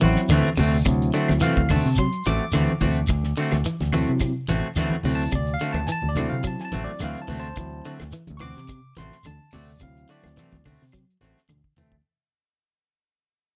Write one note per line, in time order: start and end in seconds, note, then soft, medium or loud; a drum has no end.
0.01 0.15 A1 medium
0.01 0.25 E3 medium
0.01 0.28 F#3 soft
0.01 0.21 C4 medium
0.01 0.29 C4 soft
0.01 0.29 E4 medium
0.01 0.20 F#4 medium
0.01 closed hi-hat medium
0.01 high conga loud
0.01 shekere soft
0.16 snare soft
0.29 0.43 D2 medium
0.29 0.54 D3 medium
0.29 0.48 E3 medium
0.29 0.48 A3 medium
0.29 0.49 C4 medium
0.29 0.49 F#4 medium
0.29 closed hi-hat medium
0.29 high conga medium
0.29 claves medium
0.29 shekere loud
0.44 high conga medium
0.57 0.82 D2 loud
0.57 0.81 C3 medium
0.57 0.77 A3 medium
0.57 0.76 C4 medium
0.57 0.76 F#4 medium
0.57 open hi-hat medium
0.57 low conga medium
0.57 shekere soft
0.85 1.09 D2 loud
0.85 1.09 C3 loud
0.85 1.66 F#3 medium
0.85 1.66 C4 medium
0.85 1.67 E4 medium
0.85 kick medium
0.85 closed hi-hat medium
0.85 claves medium
0.85 shekere medium
1.02 closed hi-hat soft
1.13 1.37 D3 medium
1.13 1.32 A3 medium
1.13 1.32 C4 medium
1.13 1.31 F#4 medium
1.13 closed hi-hat medium
1.13 shekere soft
1.28 1.41 D2 medium
1.28 snare soft
1.28 high conga loud
1.28 claves medium
1.40 1.65 E3 medium
1.40 1.60 E3 medium
1.40 1.60 A3 medium
1.40 1.60 C4 medium
1.40 1.60 F#4 medium
1.40 1.69 F5 loud
1.40 closed hi-hat medium
1.40 high conga soft
1.40 low conga medium
1.40 shekere medium
1.57 1.80 D2 medium
1.57 kick medium
1.57 high conga medium
1.69 1.94 D3 medium
1.69 1.88 A3 soft
1.69 1.88 C4 medium
1.69 1.87 F#4 medium
1.69 1.98 A5 medium
1.69 kick medium
1.69 open hi-hat medium
1.69 high conga medium
1.69 low conga medium
1.69 claves medium
1.69 shekere soft
1.86 2.08 C3 medium
1.95 2.22 F#3 medium
1.95 2.25 C6 medium
1.95 kick medium
1.95 closed hi-hat medium
1.95 claves medium
1.95 shekere medium
2.13 closed hi-hat soft
2.24 2.38 A1 medium
2.24 2.50 E3 medium
2.24 2.44 A3 soft
2.24 2.44 C4 soft
2.24 2.43 F#4 medium
2.24 3.90 D6 loud
2.24 snare soft
2.24 closed hi-hat medium
2.24 high conga medium
2.24 shekere soft
2.52 2.66 D2 medium
2.52 2.77 D3 medium
2.52 2.71 E3 medium
2.52 2.71 A3 medium
2.52 2.72 C4 medium
2.52 2.72 F#4 medium
2.52 closed hi-hat medium
2.52 high conga medium
2.52 claves medium
2.52 shekere medium
2.69 closed hi-hat soft
2.69 high conga medium
2.81 3.04 D2 medium
2.81 3.05 E3 medium
2.81 3.00 A3 soft
2.81 2.99 C4 soft
2.81 2.99 F#4 medium
2.81 kick medium
2.81 open hi-hat medium
2.81 low conga medium
2.81 shekere soft
2.96 closed hi-hat soft
3.07 3.32 D2 medium
3.07 muted clean electric guitar stroke medium
3.07 kick medium
3.07 closed hi-hat medium
3.07 high conga soft
3.07 claves medium
3.07 shekere medium
3.24 snare soft
3.37 3.61 D3 medium
3.37 3.56 A3 medium
3.37 3.56 C4 medium
3.37 3.55 F#4 medium
3.37 closed hi-hat medium
3.37 shekere soft
3.51 3.63 D2 medium
3.51 snare soft
3.51 closed hi-hat soft
3.51 high conga loud
3.51 claves medium
3.65 3.89 E3 medium
3.65 closed hi-hat medium
3.65 high conga soft
3.65 shekere medium
3.81 4.03 D2 medium
3.81 snare soft
3.81 closed hi-hat soft
3.81 high conga medium
3.92 4.17 E3 medium
3.92 4.31 F#3 medium
3.92 4.11 A3 medium
3.92 4.11 C4 medium
3.92 4.32 C4 medium
3.92 4.32 E4 medium
3.92 4.10 F#4 medium
3.92 closed hi-hat medium
3.92 high conga medium
3.92 low conga medium
3.92 claves medium
3.92 shekere soft
4.09 4.31 C3 medium
4.20 4.45 C3 medium
4.20 kick medium
4.20 snare soft
4.20 closed hi-hat medium
4.20 claves medium
4.20 shekere medium
4.48 4.61 A1 medium
4.48 4.73 E3 medium
4.48 4.67 A3 medium
4.48 4.67 C4 medium
4.48 4.67 F#4 medium
4.48 closed hi-hat medium
4.48 high conga medium
4.48 low conga medium
4.48 shekere soft
4.76 4.89 D2 medium
4.76 5.01 D3 medium
4.76 4.95 E3 medium
4.76 4.95 A3 medium
4.76 4.95 C4 medium
4.76 4.95 F#4 medium
4.76 closed hi-hat medium
4.76 high conga medium
4.76 claves medium
4.76 shekere medium
4.91 high conga medium
5.03 5.27 D2 medium
5.03 5.29 C3 medium
5.03 5.31 F#3 soft
5.03 5.23 A3 soft
5.03 5.23 C4 soft
5.03 5.31 C4 soft
5.03 5.31 E4 medium
5.03 5.23 F#4 medium
5.03 open hi-hat medium
5.03 low conga medium
5.03 shekere soft
5.15 5.33 A5 loud
5.32 5.56 D2 medium
5.32 5.56 C3 medium
5.32 5.52 D5 loud
5.32 kick loud
5.32 closed hi-hat medium
5.32 claves medium
5.32 shekere medium
5.47 closed hi-hat soft
5.54 5.71 F5 loud
5.60 5.85 D3 medium
5.60 5.79 A3 soft
5.60 5.79 C4 soft
5.60 5.79 F#4 medium
5.60 snare soft
5.60 closed hi-hat medium
5.60 shekere soft
5.73 5.85 D2 medium
5.73 5.90 A5 medium
5.73 high conga loud
5.73 claves medium
5.87 6.12 E3 medium
5.87 5.90 G#5 medium
5.87 closed hi-hat medium
5.87 high conga soft
5.87 shekere loud
5.92 6.09 A5 loud
6.02 6.26 D2 medium
6.02 high conga medium
6.09 6.26 D5 loud
6.15 6.40 D3 medium
6.15 6.97 F#3 medium
6.15 6.35 A3 soft
6.15 6.35 C4 medium
6.15 6.98 C4 medium
6.15 6.98 E4 medium
6.15 6.34 F#4 medium
6.15 snare soft
6.15 closed hi-hat medium
6.15 high conga medium
6.15 low conga medium
6.15 claves medium
6.15 shekere soft
6.29 6.55 C3 medium
6.29 6.46 F5 medium
6.44 6.68 F#3 medium
6.44 6.64 A5 medium
6.44 kick medium
6.44 closed hi-hat medium
6.44 claves medium
6.44 shekere medium
6.59 6.64 G#5 medium
6.59 snare soft
6.59 closed hi-hat soft
6.65 6.82 A5 medium
6.72 6.86 A1 medium
6.72 6.96 E3 medium
6.72 6.91 A3 soft
6.72 6.91 C4 medium
6.72 6.91 F#4 medium
6.72 closed hi-hat medium
6.72 high conga loud
6.72 low conga medium
6.72 shekere soft
6.84 7.01 D5 loud
7.00 7.14 D2 medium
7.00 7.24 D3 medium
7.00 7.18 E3 medium
7.00 7.27 F#3 medium
7.00 7.19 A3 medium
7.00 7.19 C4 medium
7.00 7.27 C4 soft
7.00 7.27 E4 medium
7.00 7.19 F#4 medium
7.00 closed hi-hat medium
7.00 high conga medium
7.00 claves medium
7.00 shekere medium
7.04 7.21 F5 loud
7.17 closed hi-hat soft
7.22 7.38 A5 medium
7.28 7.52 D2 loud
7.28 7.52 E3 medium
7.28 7.47 A3 soft
7.28 7.47 C4 medium
7.28 7.47 F#4 medium
7.28 open hi-hat medium
7.28 low conga medium
7.28 shekere soft
7.40 7.91 C5 medium
7.40 7.93 A5 loud
7.44 closed hi-hat soft
7.56 7.80 D2 medium
7.56 7.80 E3 loud
7.56 7.95 F#3 medium
7.56 7.95 C4 medium
7.56 7.96 E4 medium
7.56 kick loud
7.56 closed hi-hat medium
7.56 claves medium
7.56 shekere medium
7.85 8.09 D3 medium
7.85 8.03 A3 soft
7.85 8.03 C4 medium
7.85 8.02 F#4 medium
7.85 closed hi-hat medium
7.85 shekere soft
8.00 8.12 D2 loud
8.00 snare soft
8.00 closed hi-hat soft
8.00 high conga medium
8.00 claves medium
8.12 8.36 E3 medium
8.12 closed hi-hat medium
8.12 high conga soft
8.12 shekere medium
8.27 8.52 D2 medium
8.27 closed hi-hat soft
8.27 high conga medium
8.37 8.64 E3 medium
8.37 8.41 C#6 medium
8.37 high conga medium
8.37 low conga medium
8.37 claves medium
8.37 shekere soft
8.41 8.59 C4 medium
8.41 8.58 F#4 medium
8.41 8.95 D6 loud
8.41 closed hi-hat soft
8.57 8.79 C3 medium
8.57 snare soft
8.68 8.92 C3 medium
8.68 kick medium
8.68 closed hi-hat medium
8.68 high conga soft
8.68 claves medium
8.68 shekere medium
8.97 9.10 A1 medium
8.97 9.20 E3 medium
8.97 9.15 A3 soft
8.97 9.15 C4 medium
8.97 9.15 F#4 medium
8.97 9.25 C6 medium
8.97 snare soft
8.97 closed hi-hat medium
8.97 high conga loud
8.97 low conga medium
8.97 shekere soft
9.12 snare soft
9.23 9.38 D2 medium
9.23 9.49 D3 medium
9.23 9.53 A5 loud
9.23 closed hi-hat medium
9.23 high conga medium
9.23 claves medium
9.23 shekere medium
9.52 9.76 D2 medium
9.52 9.76 C3 medium
9.52 9.71 A3 soft
9.52 9.71 C4 medium
9.52 9.71 F#4 medium
9.52 9.80 D5 medium
9.52 open hi-hat medium
9.52 low conga medium
9.52 shekere soft
9.80 10.04 D2 loud
9.80 10.04 C3 loud
9.80 10.61 F#3 medium
9.80 10.61 C4 medium
9.80 10.62 E4 medium
9.80 10.09 F5 loud
9.80 kick medium
9.80 closed hi-hat medium
9.80 claves medium
9.80 shekere medium
9.97 closed hi-hat soft
10.08 10.32 D3 medium
10.08 10.27 A3 soft
10.08 10.27 C4 soft
10.08 10.27 F#4 medium
10.08 10.64 D5 loud
10.08 closed hi-hat medium
10.08 shekere soft
10.24 10.35 D2 loud
10.24 snare soft
10.24 high conga loud
10.24 claves medium
10.37 10.60 E3 medium
10.37 10.55 E3 medium
10.37 10.55 A3 medium
10.37 10.55 C4 medium
10.37 10.55 F#4 medium
10.37 closed hi-hat medium
10.37 high conga soft
10.37 low conga medium
10.37 shekere loud
10.52 10.75 D2 medium
10.52 kick medium
10.52 snare soft
10.52 high conga medium
10.65 10.89 D3 medium
10.65 10.83 A3 soft
10.65 10.83 C4 medium
10.65 10.83 F#4 medium
10.65 kick medium
10.65 open hi-hat medium
10.65 high conga medium
10.65 low conga medium
10.65 claves medium
10.65 shekere soft
10.82 11.04 C3 medium
10.82 snare soft
10.92 11.16 F#3 medium
10.92 kick medium
10.92 closed hi-hat medium
10.92 claves medium
10.92 shekere medium
11.10 closed hi-hat soft
11.21 11.33 A1 medium
11.21 11.39 A3 soft
11.21 11.38 C4 medium
11.21 11.38 F#4 medium
11.21 snare soft
11.21 closed hi-hat medium
11.21 high conga medium
11.21 shekere soft
11.37 snare soft
11.49 11.61 D2 medium
11.49 11.72 D3 medium
11.49 high tom medium
11.49 high conga medium
11.49 claves medium
11.49 shekere medium
11.64 kick medium
11.77 11.99 D2 medium
11.77 12.01 E3 medium
11.77 11.95 A3 medium
11.77 11.94 C4 medium
11.77 mid tom medium
11.77 low conga medium
11.77 shekere soft
11.92 kick medium